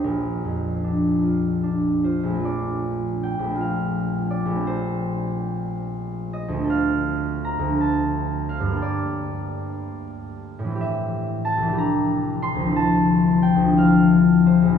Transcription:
<<
  \new Staff \with { instrumentName = "Harp" } { \time 6/8 \key bes \major \tempo 4. = 59 << { <bes' c'' d''>2~ <bes' c'' d''>8 c''8 | d''4 g''8 f''4 d''8 | c''2~ c''8 ees''8 | f''4 bes''8 a''4 f''8 |
d''2. | \key d \minor e''4 a''8 bes''4 c'''8 | a''4 g''8 f''4 c''8 | } \\ { <bes,, bes d'>8 f,8 d'8 f'8 d'8 f'8~ | f'2.~ | f'2.~ | f'2. |
r2. | r2. | r2. | } >> }
  \new Staff \with { instrumentName = "Harp" } { \time 6/8 \key bes \major r2. | <bes,, a c' f'>4. <bes,, a c' f'>4. | <bes,, a c' g'>2. | <d, a c' a'>4. <d, a c' a'>4. |
<g, g bes a'>2. | \key d \minor <a, e c' g'>4. <c, e d' g'>4. | <d, f c' e'>4. <d, f c' e'>4. | }
>>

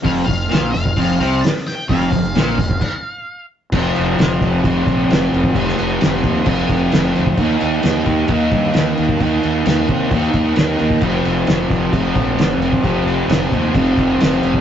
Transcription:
<<
  \new Staff \with { instrumentName = "Lead electric guitar" } { \time 4/4 \key ees \lydian \tempo 4 = 131 f''8 f''4 f''4. a''8 g''8 | f''2.~ f''8 r8 | r1 | r1 |
r1 | r1 | r1 | r1 | }
  \new Staff \with { instrumentName = "Distorted electric guitar" } { \clef bass \time 4/4 \key ees \lydian f,8 f,8 bes,8 f,8 f,8 c8 r4 | f,8 f,8 bes,8 f,8 r2 | <f, c f>2 <f, c f>2 | <f, c f>2 <f, c f>2 |
<ees bes ees'>2 <ees bes ees'>2 | <ees bes ees'>2 <ees bes ees'>2 | <f, c f>2 <f, c f>2 | <f, c f>2 <f, c f>2 | }
  \new Staff \with { instrumentName = "Fingered electric bass" } { \clef bass \time 4/4 \key ees \lydian f,,8 f,,8 bes,,8 f,,8 f,,8 c,8 r4 | f,,8 f,,8 bes,,8 f,,8 r2 | f,,8 f,,8 f,,8 f,,8 f,,8 bes,,8 f,,8 f,,8 | f,,8 f,,8 f,,8 ees,8 f,,8 f,,8 f,,8 d,8 |
ees,8 ees,8 ees,8 ees,8 ees,8 g,8 ees,8 ees,8 | ees,8 ees,8 ees,8 c8 ees,8 ees,8 ees,8 ees,8 | f,,8 f,,8 f,,8 f,,8 f,,8 bes,,8 f,,8 f,,8 | f,,8 f,,8 f,,8 ees,8 f,,8 f,,8 f,,8 f,,8 | }
  \new DrumStaff \with { instrumentName = "Drums" } \drummode { \time 4/4 <hho bd>8 <hho bd>8 <hho sn>8 hho16 bd16 <hho bd>8 hho8 <hho sn>16 sn16 <hho sn>8 | <hho bd>8 <hho bd>8 <hho sn>8 <hho bd>16 bd16 <cymc bd>4 r4 | <cymc bd>8 cymc8 <cymc sn>8 <cymc bd>8 <cymc bd>8 <cymc bd>8 <cymc sn>8 cymc16 bd16 | <cymc bd>16 sn16 cymc8 <cymc sn>8 <cymc bd>8 <cymc bd>8 <cymc bd>8 <cymc sn>8 cymc16 bd16 |
<cymc bd>8 cymc8 <cymc sn>8 <cymc bd>8 <cymc bd>8 <cymc bd>8 <cymc sn>8 cymc16 bd16 | <cymc bd>8 cymc8 <cymc sn>8 <cymc bd>8 <cymc bd>8 <cymc bd>8 <cymc sn>8 cymc16 bd16 | <cymc bd>8 cymc8 <cymc sn>8 <cymc bd>8 <cymc bd>8 <cymc bd>8 <cymc sn>8 cymc16 bd16 | <cymc bd>8 cymc8 <cymc sn>8 <cymc bd>8 <cymc bd>8 <cymc bd>8 <cymc sn>8 cymc16 bd16 | }
>>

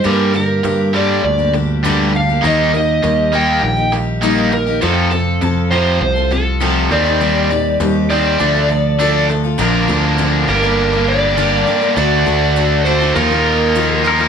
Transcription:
<<
  \new Staff \with { instrumentName = "Electric slide guitar" } { \time 4/4 \key g \minor \tempo 4 = 101 bes'8 bes'4 d''8 d''8 r4 f''8 | ees''8 ees''4 g''8 g''8 r4 bes'8 | a'8 a'4 c''8 c''8 a'4 d''8~ | d''4 r8 d''2 r8 |
r4. bes'4 d''4. | d''4. c''8 bes'4. r8 | }
  \new Staff \with { instrumentName = "Clean electric guitar" } { \time 4/4 \key g \minor r1 | r1 | r1 | r1 |
r1 | r2. r8 bes'16 bes'16 | }
  \new Staff \with { instrumentName = "Steel-string acoustic guitar" } { \time 4/4 \key g \minor <g, d g bes d' g'>8 <g bes d' g'>8 <g, d g bes d' g'>8 <g bes d' g'>8. <g bes d' g'>16 <g bes d' g'>8 <g, d g bes d' g'>8 <g bes d' g'>16 <g bes d' g'>16 | <ees g bes ees' g'>8 <g bes ees' g'>8 <ees g bes ees' g'>8 <g bes ees' g'>8. <bes ees' g'>16 <g bes ees' g'>8 <ees g bes ees' g'>8 <g bes ees' g'>16 <bes ees' g'>16 | <f c' f' a'>8 <f c' f' a'>8 <f c' f' a'>8 <f c' f' a'>8. <c' f' a'>16 <f c' f' a'>8 <f c' f' a'>8 <g c' ees' g'>16 <c' ees' g'>16 | <ees g c' ees' g'>8 <g c' ees' g'>8 <ees g c' ees' g'>8 <g c' ees' g'>8 <d f d' f' a'>16 <d' f' a'>16 <f d' f' a'>8 <d f d' f' a'>8 <f d' f' a'>16 <d' f' a'>16 |
<bes, d f c' d' bes'>8 <f c' d' bes'>8 <bes, d f c' d' bes'>8 <g bes d' bes'>16 <g bes d' bes'>8 <g bes d' bes'>8. <g, d g bes d' bes'>8 <g bes d' bes'>16 <g bes d' bes'>16 | <d a d' fis' a'>8 <a d' fis' a'>8 <d a d' fis' a'>8 <a d' fis' a'>16 <d' fis' a'>16 <ees f bes f' bes'>16 <bes f' bes'>8. <ees f bes f' bes'>8 <f bes f' bes'>16 <bes f' bes'>16 | }
  \new Staff \with { instrumentName = "Overdriven electric guitar" } { \clef bass \time 4/4 \key g \minor <g, d g>8 <g, d>8 <g, d>8 <g, d g>8 <g, d>8 <g, d>8 <g, d g>8 <g, d>8 | <ees bes ees'>8 <ees bes>8 <ees bes>8 <ees bes ees'>8 <ees bes>8 <ees bes>8 <ees bes ees'>8 <ees bes>8 | <f, c f>8 <f, c>8 <f, c>8 <f, c f>8 <f, c>8 <f, c>8 <f, c f>8 <ees g c'>8 | <ees g c'>8 <ees g>8 <ees g>8 <ees g c'>8 <d a d'>8 <d a>8 <d a d'>8 <d a>8 |
<bes, d f bes d' bes'>4. <g, d g bes d' g'>4. <g, d g bes d' g'>4 | <d a d' fis'>4. <d a d' fis'>8 <ees bes ees' f'>4. <ees bes ees' f'>8 | }
  \new Staff \with { instrumentName = "Picked electric bass" } { \clef bass \time 4/4 \key g \minor g,4 g,4 d,2 | ees,4 ees,4 bes,,2 | f,4 f,4 c,4. ees,8~ | ees,4 ees,4 d,2 |
bes,,8 d,4 g,,2 r8 | d,8 d,4. ees,2 | }
>>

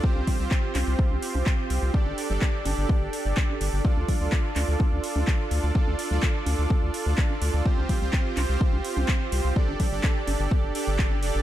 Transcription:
<<
  \new Staff \with { instrumentName = "Supersaw synth" } { \time 4/4 \key d \minor \tempo 4 = 126 <c' f' g' c''>8. <c' f' g' c''>2.~ <c' f' g' c''>16 | <d' g' a' d''>8. <d' g' a' d''>2.~ <d' g' a' d''>16 | <d' f' a' d''>8. <d' f' a' d''>2.~ <d' f' a' d''>16 | <d' f' a' d''>8. <d' f' a' d''>2.~ <d' f' a' d''>16 |
<c' f' g' c''>8. <c' f' g' c''>2.~ <c' f' g' c''>16 | <d' g' a' d''>8. <d' g' a' d''>4.~ <d' g' a' d''>16 <d' g' a' d''>4 <d' g' a' d''>8 | }
  \new Staff \with { instrumentName = "Analog synth bass" } { \clef bass \time 4/4 \key d \minor r16 c,16 r16 c,16 r8 c,16 c,16 r16 c,16 r16 c,16 r8 c,16 c,16 | r16 g,,16 r16 g,,16 r8 g,,16 g,,16 r16 g,,16 r16 g,,16 r8 g,,16 g,,16 | r16 d,16 r16 d,16 r8 d,16 d,16 r16 d,16 r16 d,16 r8 d,16 d,16 | r16 d,16 r16 d,16 r8 d,16 d,16 r16 d,16 r16 d,16 r8 d,16 d,16 |
r16 c,16 r16 c,16 r8 c,16 c,16 r16 c,16 r16 c,16 r8 c,16 c,16 | r16 g,,16 r16 g,,16 r8 g,,16 g,,16 r16 g,,16 r16 g,,8. f,,16 g,,16 | }
  \new DrumStaff \with { instrumentName = "Drums" } \drummode { \time 4/4 bd16 cgho16 <cgl hho bd>16 cgl16 <hc bd>8 <hc cgho hho>8 bd16 cgho16 hho16 cgho16 <hc bd>8 hho8 | bd16 cgho16 hho16 cgl16 <hc bd>8 <cgho hho>8 bd8 hho8 <hc bd>16 cgho16 hho8 | bd16 cgho16 <cgl hho bd>16 cgl16 <hc bd>8 <hc cgho hho>8 bd16 cgho16 hho16 cgho16 <hc bd>8 hho8 | bd16 cgho16 hho16 cgl16 <hc bd>8 <cgho hho>8 bd8 hho8 <hc bd>16 cgho16 hho8 |
bd16 cgho16 <cgl hho bd>16 cgl16 <hc bd>8 <hc cgho hho>8 bd16 cgho16 hho16 cgho16 <hc bd>8 hho8 | bd16 cgho16 <cgl hho bd>16 cgl16 <hc bd>8 <cgho hho>8 bd8 hho8 <hc bd>16 cgho16 hho8 | }
>>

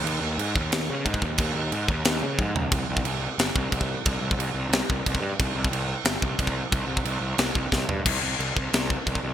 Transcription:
<<
  \new Staff \with { instrumentName = "Picked electric bass" } { \clef bass \time 4/4 \key c \phrygian \tempo 4 = 180 ees,8 ees,8 aes,8 ees,8 ees,8 des8 aes,8 ees,8 | ees,8 ees,8 aes,8 ees,8 ees,8 des8 aes,8 des,8 | c,8 c,8 c,4 g,,8 c,8 c,4 | c,8 c,8 c,8 c,8 c,8 c,8 c,8 g,8 |
c,8 c,8 c,4 g,,8 c,8 c,4 | c,8 c,8 c,8 c,8 c,8 c,8 c,8 g,8 | c,8 c,8 c,8 c,8 c,4 c,8 c,8 | }
  \new DrumStaff \with { instrumentName = "Drums" } \drummode { \time 4/4 cymc4 cymc8 bd8 <cymc sn>4 <cymc bd>16 bd16 bd8 | <cymc bd>4 cymc8 bd8 <cymc sn>4 <bd tommh>8 tomfh8 | <cymc bd>8. bd16 cymc4 <cymc sn>8 bd8 <cymc bd>16 bd8. | <cymc bd>8. bd16 cymc4 <cymc sn>8 bd8 <cymc bd>16 bd8. |
<cymc bd>8. bd16 cymc4 <cymc sn>8 bd8 <cymc bd>16 bd8. | <cymc bd>8. bd16 cymc4 <cymc sn>8 bd8 <bd sn>8 tomfh8 | <cymc bd>4 cymc8 bd8 <cymc sn>8 bd8 <cymc bd>16 bd8. | }
>>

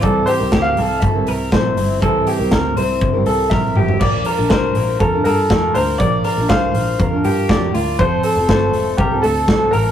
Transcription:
<<
  \new Staff \with { instrumentName = "Upright piano" } { \time 4/4 \key bes \lydian \tempo 4 = 121 d''8 c''8. f''8. e''2~ | e''2. e''4 | d''4 bes'4 a'8 bes'4 c''8 | d''4 f''2 d''4 |
c''4 a'4 g'8 a'4 bes'8 | }
  \new Staff \with { instrumentName = "Clean electric guitar" } { \time 4/4 \key bes \lydian a'8 g'8 g'8 a'4 bes'8 c''4 | a'8 g'8 bes'8 c''4 a'8 bes'8 g'8 | d''8 bes'8 c''4 bes'8 a'8 a'8 bes'8 | d''8 bes'8 c''4 bes'8 g'4 f'8 |
c''8 a'8 c''4 bes'8 a'8 a'8 bes'8 | }
  \new Staff \with { instrumentName = "Steel-string acoustic guitar" } { \time 4/4 \key bes \lydian <c e g c' e' bes'>8. <g c' e' bes'>8. <g c' e' bes'>8. <g c' e' bes'>8. <g c' e' bes'>8 <g c' e' bes'>8 | <c e g c' e' bes'>8. <g c' e' bes'>8. <g c' e' bes'>8. <g c' e' bes'>8. <g c' e' bes'>8 <g c' e' bes'>8 | <bes, f bes d' f' bes'>8. <bes d' f' bes'>8. <bes d' f' bes'>8. <bes d' f' bes'>8. <bes d' f' bes'>8 <bes d' f' bes'>8 | <bes, f bes d' f' bes'>8. <bes d' f' bes'>8. <bes d' f' bes'>8. <bes d' f' bes'>8. <bes d' f' bes'>8 <bes d' f' bes'>8 |
<f a c' f' a'>8. <c' f' a'>8. <a c' f' a'>8. <c' f' a'>8. <a c' f' a'>8 <a c' f' a'>8 | }
  \new Staff \with { instrumentName = "Picked electric bass" } { \clef bass \time 4/4 \key bes \lydian c,8 r16 c,16 d,8 c,8 g,,8 c,8 bes,,8 g,,8 | c,8 r16 c,16 d,8 c,8 g,,8 c,8 bes,,8 g,,8 | bes,,8 r16 bes,,16 c,8 bes,,8 f,8 g,8 f,8 d,8 | bes,,8 r16 bes,,16 c,8 bes,,8 f,8 g,8 f,8 d,8 |
f,,8 r16 f,,16 g,,8 f,,8 c,8 d,8 c,8 a,,8 | }
  \new DrumStaff \with { instrumentName = "Drums" } \drummode { \time 4/4 <hh bd>8 hho8 <hh bd sn>8 hho8 <hh bd>8 hho8 <hh bd sn>8 hho8 | <hh bd>8 hho8 <hh bd sn>8 hho8 <hh bd>8 hho8 <bd sn>8 toml16 tomfh16 | <cymc bd>8 hho8 <hh bd sn>8 hho8 <hh bd>8 hho8 <hh bd sn>8 hho8 | <hh bd>8 hho8 <hh bd sn>8 hho8 <hh bd>8 hho8 <hh bd sn>8 hho8 |
<hh bd>8 hho8 <hh bd sn>8 hho8 <hh bd>8 hho8 <hh bd sn>8 hho8 | }
>>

